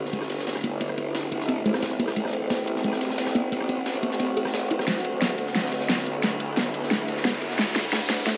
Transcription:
Already playing: A1 A3 C4 E4
0.05 snare
0.13 A3, closed hi-hat, open hi-hat
0.22 cross-stick, snare
0.30 G1, snare, closed hi-hat, ride
0.39 snare
0.47 snare, closed hi-hat, ride
0.55 cross-stick, snare
0.64 B3, closed hi-hat, ride
0.81 B3, closed hi-hat, ride
0.89 cross-stick
0.98 C4, closed hi-hat, ride
1.15 snare, closed hi-hat, ride
1.32 B3, closed hi-hat, ride
1.40 snare
1.48 C4, closed hi-hat, ride
1.66 A1 A3, closed hi-hat, ride
1.74 cross-stick, snare
1.83 B3, snare, closed hi-hat, ride
2.00 C2 B3, closed hi-hat, ride
2.08 cross-stick, snare
2.16 A1 A3 F#4, closed hi-hat, ride
2.25 cross-stick, snare
2.33 closed hi-hat, ride
2.50 B3, snare, closed hi-hat, ride
2.67 closed hi-hat, ride
2.76 snare
2.83 A3, closed hi-hat, open hi-hat
2.93 cross-stick, snare
3.01 A1, snare, closed hi-hat, ride
3.10 snare
3.18 A1, snare, closed hi-hat, ride
3.26 cross-stick, snare
3.35 B3, closed hi-hat, ride
3.52 B3, closed hi-hat, ride
3.61 cross-stick
3.69 C4, closed hi-hat, ride
3.86 snare, closed hi-hat, ride
4.03 B3, closed hi-hat, ride
4.11 snare
4.20 C4, closed hi-hat, ride
4.37 A4, closed hi-hat, ride
4.45 cross-stick, snare
4.54 A1 A4, snare, closed hi-hat, ride
4.71 E4, closed hi-hat, ride
4.79 cross-stick, snare
4.87 D2 D3 A3 E4, snare, closed hi-hat, ride, riser
4.97 snare
5.05 closed hi-hat, ride
5.22 B3, snare, closed hi-hat, ride
5.38 closed hi-hat, ride
5.47 snare
5.55 A3, snare, closed hi-hat, open hi-hat
5.65 snare
5.72 B1, snare, closed hi-hat, ride
5.80 snare
5.89 B3, snare, closed hi-hat, ride
5.98 snare
6.06 closed hi-hat, ride
6.23 A3, snare, closed hi-hat, ride
6.40 closed hi-hat, ride
6.57 B3, snare, closed hi-hat, ride
6.74 closed hi-hat, ride
6.83 snare
6.91 A3, snare, closed hi-hat, ride
7.08 D2, closed hi-hat, ride
7.17 snare
7.24 B3, snare, closed hi-hat, ride
7.41 F#2, closed hi-hat, ride
7.50 snare
7.58 D2 A3 D4, snare, closed hi-hat, ride
7.67 snare
7.76 snare, closed hi-hat, ride
7.92 A3, snare, closed hi-hat, ride
8.10 snare, closed hi-hat, ride
8.18 snare
8.27 A3, snare, closed hi-hat, open hi-hat

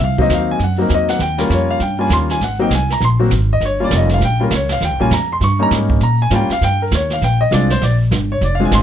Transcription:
0.00 C2
0.04 F5
0.18 F#3 A#3 C4 D#4 D#5, kick
0.29 D#2, kick, snare, hi-hat pedal
0.34 F5
0.51 G#5
0.59 F#2, brush sweep, kick, snare
0.64 F#5
0.78 F#3 A#3 C4 D#4 A#4
0.89 E2, kick, snare, hi-hat pedal
0.94 D#5
1.08 F#5, snare
1.19 D#2 G5, brush sweep, kick, snare
1.38 G3 A#3 C#4 F4 A#4, snare
1.50 F2 C#5, kick, snare, hi-hat pedal
1.71 F5
1.80 G2 G5, brush sweep, kick, snare
1.98 G3 A#3 C#4 F4 G#5
2.10 D#2 C6, kick, snare, hi-hat pedal
2.29 G#5, snare
2.40 G#1 F#5, brush sweep, kick, snare
2.59 F#3 A#3 C4 D#4 G5
2.70 C2, kick, snare, hi-hat pedal
2.75 G#5
2.90 A#5, snare
3.00 A#1 C6, brush sweep, kick, snare
3.19 F#3 A#3 C4 F#4
3.30 G#1, kick, snare, hi-hat pedal
3.53 D#5
3.60 G1, brush sweep, kick, snare
3.65 C#5
3.80 G3 A#3 C#4 F4
3.84 D5
3.90 F1, kick, snare, hi-hat pedal
3.97 D#5
4.09 snare
4.14 F5
4.20 A#1, brush sweep, kick, snare
4.25 G5
4.40 G3 A#3 C#4 F4 A#4
4.50 C#2, kick, snare, hi-hat pedal
4.55 C#5
4.69 F5, snare
4.80 D#2, brush sweep, kick, snare
4.85 G5
4.91 C#2
4.99 A#1 G3 A#3 C#4 F4 G#5
5.11 F2 A#5, kick, snare, hi-hat pedal
5.32 C6
5.40 G2 C#6, brush sweep, kick, snare
5.59 G3 A#3 C#4 D#4 A#5
5.71 G#2, kick, snare, hi-hat pedal
5.90 kick
6.01 A#2 A#5, brush sweep, kick, snare
6.22 G#5
6.30 G#2 G3 A#3 C#4 F4, kick, snare, hi-hat pedal
6.35 G5
6.50 F5, muted upright bass stroke, snare
6.61 G2 G5, brush sweep, kick, snare
6.82 A#4
6.91 D#2 C#5, kick, snare, hi-hat pedal
7.10 F5, snare
7.21 A#1 G5, brush sweep, kick, snare
7.41 D#5
7.51 C2 G#3 C4 D4 F4 D5, kick, snare, hi-hat pedal
7.70 C5, snare
7.81 A#1 D5, brush sweep, kick, snare
8.11 G1, kick, snare, hi-hat pedal
8.32 C#5
8.41 F1 D5, brush sweep, kick, snare
8.55 F5
8.60 G#3 C4 D4 F4
8.65 G#5
8.71 G#1 C6, kick, snare, hi-hat pedal

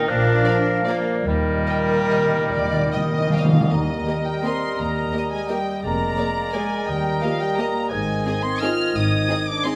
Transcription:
Already playing: D#4 A#4
0.08 A#1 A#2 F3 A#3 D4 A#4 F5
0.45 A#4 D5 F5
0.86 A#2 F3 A#3 A#4 D5 F5
1.26 D#2 A#2 D#3 G3 A#3 A#4 D#5
1.34 D#3
1.42 D#3
1.51 D#3
1.58 D#3
1.68 A#4 D#5 G5
1.76 D#3
1.85 D#3
1.93 D#3
2.10 D#3 D#5 G5
2.18 D#3
2.26 D#3
2.34 D#3
2.42 D#3
2.49 D#2 D#3 D5
2.57 D#3
2.65 D#3
2.73 D#3
2.80 D#3
2.88 D#3 D#5
2.93 D#5 G5
2.97 D#3
3.05 D#3
3.12 D#3 D#5
3.21 D#3
3.30 D#3 F3 F5 G5
3.35 D#3 D#5
3.45 D#3
3.53 D#3
3.61 D#3
3.71 D#2 D#3 G3 A#4 D#5 A#5
4.07 A#3 G4 A#4 D#5
4.26 G3 G5
4.43 A#3 C4 G4 A#4 D#5 C6
4.78 D#2 A#3 A#5
5.12 A#3 G4 A#4 D#5
5.30 G#3 G#5
5.48 G3 A#3 G4 A#4 D#5 G5
5.83 F1 F2 G#3 A#3 A#4 D5 A#5
6.17 A#3 G#4 A#4 D5
6.52 G#3 A#3 G#4 A#4 D5 G#5
6.87 D#2 G3 D#5 G5
7.22 F3 A#3 G4 A#4 D#5 F5
7.41 G3 G5
7.57 A#3 G4 A#4 D#5 A#5
7.90 G#1 G#2 D#3 G#3 C5 D#5 G#5 G#6
8.25 C4 D#4 G#4 D#5
8.44 C4 C6
8.60 C4 D#4 F4 G#4 D#5 F6
8.93 G#1 G#2 D#4 D#6
9.29 C4 D#4 G#4 D#5
9.47 D4 D6
9.65 C4 D#4 G#4 D#5 C6

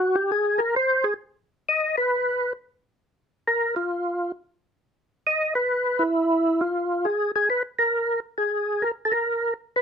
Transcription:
Already playing: F#4
0.15 G4
0.32 G#4
0.58 A#4
0.76 C5
1.04 G#4
1.69 D#5
1.97 B4
3.47 A#4
3.76 F4
5.27 D#5
5.55 B4
5.99 E4
6.61 F4
7.05 G#4
7.36 G#4
7.50 B4
7.79 A#4
8.38 G#4
8.82 A#4
9.05 A4
9.12 A#4
9.76 B4

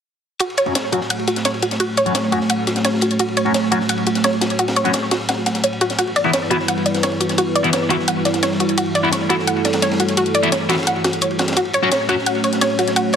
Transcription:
0.39 A3 F#4 C#5, closed hi-hat, ride
0.50 ride
0.57 C#5, closed hi-hat, ride
0.66 F#3 C#4 F#4, ride
0.75 C#5, snare, closed hi-hat, ride
0.92 F#3 C#4 F#4, closed hi-hat, ride
1.01 snare
1.10 F#5, closed hi-hat, ride
1.19 ride
1.27 F#4, closed hi-hat, ride
1.36 snare, closed hi-hat
1.45 C#5, snare, closed hi-hat, ride
1.54 ride
1.62 F#4, closed hi-hat, ride
1.71 snare, closed hi-hat
1.80 F#4, closed hi-hat, ride
1.97 C#5, closed hi-hat, ride
2.06 F#3 C#4 F#4, closed hi-hat
2.15 C#5, snare, closed hi-hat, ride
2.32 F#3 C#4 F#4, closed hi-hat, ride
2.41 snare
2.49 F#5, closed hi-hat, ride
2.67 F#4, snare, closed hi-hat, ride
2.76 snare, closed hi-hat
2.84 C#5, snare, closed hi-hat, ride
2.94 snare
3.01 F#4, closed hi-hat, ride
3.11 closed hi-hat
3.19 F#4, closed hi-hat, ride
3.28 ride
3.37 C#5, closed hi-hat, ride
3.45 F#3 C#4 F#4, ride
3.54 C#5, snare, closed hi-hat, ride
3.71 F#3 C#4 F#4, closed hi-hat, ride
3.80 snare
3.89 F#5, closed hi-hat, ride
3.98 ride
4.06 F#4, closed hi-hat, ride
4.15 snare, closed hi-hat
4.24 C#5, snare, closed hi-hat, ride
4.33 ride
4.41 F#4, snare, closed hi-hat, ride
4.50 closed hi-hat
4.59 F#4, closed hi-hat, ride
4.68 snare, ride
4.76 C#5, closed hi-hat
4.85 F#3 C#4 F#4, closed hi-hat, ride
4.93 C#5, snare, closed hi-hat, ride
5.11 F#4, snare, closed hi-hat, ride
5.20 snare
5.29 F#5, snare, closed hi-hat, ride
5.46 F#5, snare, closed hi-hat, ride
5.55 snare, closed hi-hat
5.63 C#5, closed hi-hat, ride
5.73 ride
5.81 F#4, closed hi-hat, ride
5.90 snare, closed hi-hat
5.98 G3 E4 F#4 B4, closed hi-hat, ride
6.07 ride
6.16 D5, closed hi-hat, ride
6.24 E3 B3 E4, ride
6.33 C#5, snare, closed hi-hat, ride
6.50 E3 B3 E4 F#4, closed hi-hat, ride
6.60 snare
6.68 F#5, closed hi-hat, ride
6.77 ride
6.86 D5, closed hi-hat, ride
6.95 snare, closed hi-hat
7.03 C#5, snare, closed hi-hat, ride
7.12 ride
7.20 F#4, closed hi-hat, ride
7.29 snare, closed hi-hat
7.38 F#4, closed hi-hat, ride
7.55 D5, closed hi-hat, ride
7.64 E3 B3 E4, closed hi-hat
7.73 C#5, snare, closed hi-hat, ride
7.90 E3 B3 E4 F#4, closed hi-hat, ride
7.99 snare
8.08 F#5, closed hi-hat, ride
8.25 D5, snare, closed hi-hat, ride
8.34 snare, closed hi-hat
8.43 C#5, snare, closed hi-hat, ride
8.52 snare
8.60 F#4, closed hi-hat, ride
8.69 closed hi-hat
8.78 F#4 A4, closed hi-hat, ride
8.86 ride
8.95 D5, closed hi-hat, ride
9.04 E3 B3 E4, ride
9.12 C#5, snare, closed hi-hat, ride
9.30 E3 B3 E4 F#4, closed hi-hat, ride
9.39 snare
9.47 F#5, closed hi-hat, ride
9.57 ride
9.65 D5, snare, closed hi-hat, ride
9.73 snare, closed hi-hat, ride
9.82 C#5, snare, closed hi-hat, ride
9.91 snare, ride
10.00 F#4, closed hi-hat, ride
10.08 snare, closed hi-hat
10.17 F#4, closed hi-hat, ride
10.26 closed hi-hat
10.34 D5, closed hi-hat, ride
10.43 E3 B3 E4, closed hi-hat
10.52 C#5, snare, closed hi-hat, ride
10.69 E3 B3 E4 F#4, snare, closed hi-hat, ride
10.73 snare, ride
10.78 snare, ride
10.83 snare, ride
10.87 F#5, closed hi-hat, ride
10.96 ride
11.04 F#4, snare, closed hi-hat, ride
11.13 closed hi-hat
11.21 C#5, closed hi-hat, ride
11.31 ride
11.39 F#4, snare, closed hi-hat, ride
11.48 snare, closed hi-hat, ride
11.52 snare, ride
11.57 A3 F#4 C#5, closed hi-hat, ride
11.65 ride
11.73 C#5, closed hi-hat, ride
11.83 F#3 C#4 F#4, ride
11.92 C#5, snare, closed hi-hat, ride
12.09 F#3 C#4 F#4, closed hi-hat, ride
12.19 snare
12.26 F#5, closed hi-hat, ride
12.35 ride
12.44 C#5, closed hi-hat, ride
12.53 snare, closed hi-hat
12.61 C#5, snare, closed hi-hat, ride
12.70 ride
12.79 F#4, closed hi-hat, ride
12.88 snare, closed hi-hat
12.96 F#4, closed hi-hat, ride
13.13 ride

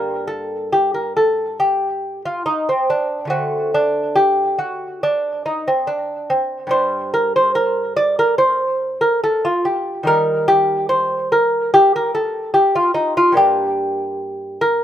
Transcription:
Already playing: G2 G3 A#3 A#4
0.27 A4
0.72 G4
0.94 A#4
1.17 A4
1.60 G4
2.25 F4
2.46 D#4
2.69 C4
2.90 D4
3.25 D3 A3
3.30 C4 F#4
3.74 D4
4.16 G4
4.59 F#4
5.03 D4
5.46 D#4
5.68 C4
5.87 D4
6.30 C4
6.67 G2 G3 D4 C5
7.14 A#4
7.36 C5
7.55 A#4
7.96 D5
8.19 A#4
8.38 C5
9.01 A#4
9.24 A4
9.45 F4
9.65 G4
10.03 D#3 G3 D#4 A#4
10.48 G4
10.89 C5
11.32 A#4
11.74 G4
11.96 A#4
12.15 A4
12.54 G4
12.75 F4
12.94 D#4
13.17 F4
13.32 G2 A#3 D4
13.37 G4
14.61 A#4

